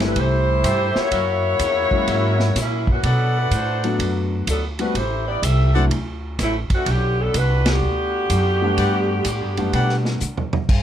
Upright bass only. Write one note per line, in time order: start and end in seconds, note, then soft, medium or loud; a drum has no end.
0.00 0.15 G1 medium
0.16 0.62 C2 medium
0.64 0.93 G2 medium
0.96 muted upright bass stroke soft
1.11 1.58 F#2 medium
1.59 1.89 E2 medium
1.91 muted upright bass stroke soft
2.07 2.54 G#2 medium
2.55 3.02 A#2 medium
3.03 3.50 B2 medium
3.51 3.97 A2 medium
3.99 4.45 F#2 medium
4.47 4.93 D2 medium
4.95 5.41 A1 medium
5.42 5.89 C2 medium
5.91 6.37 D2 medium
6.39 6.68 A1 medium
6.70 muted upright bass stroke soft
6.86 7.33 B1 medium
7.34 7.80 C2 medium
7.82 8.28 D2 medium
8.30 8.76 F#2 medium
8.77 9.24 G2 medium
9.25 9.41 A2 medium
9.41 9.57 G2 soft
9.57 9.72 F#2 medium
9.73 10.20 B2 medium
10.21 10.68 D3 medium
10.69 10.83 G2 medium